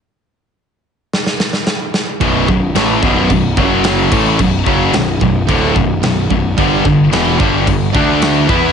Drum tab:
CC |----------------|x---x---x---x-x-|x---x---x---x---|x---x---x---x---|
SD |--------ooooo-o-|----o-------o---|----o-------o---|----o-------o---|
BD |----------------|o-o---o-o-o---o-|o-o---o-o-o---o-|o-o---o-o-o---o-|